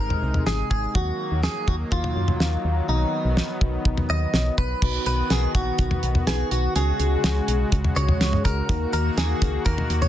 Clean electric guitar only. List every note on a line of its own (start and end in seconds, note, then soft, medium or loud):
0.00 0.43 A#4 loud
0.46 0.69 G#4 medium
0.71 0.93 G#4 medium
0.95 1.40 F#4 loud
1.44 1.68 G#4 medium
1.68 1.74 F#4 medium
1.92 2.89 F4 medium
2.89 4.30 D#4 medium
4.10 4.58 D#5 loud
4.58 5.03 B4 loud
5.07 5.31 B4 medium
5.31 5.54 G#4 medium
5.55 6.27 F#4 medium
6.27 6.51 G#4 medium
6.52 6.75 F#4 medium
6.76 7.69 G#4 medium
7.96 8.44 C#5 medium
8.45 8.92 A#4 medium
8.93 9.18 A#4 medium
9.17 9.63 G#4 medium
9.66 10.00 A#4 loud
10.02 10.07 C#5 medium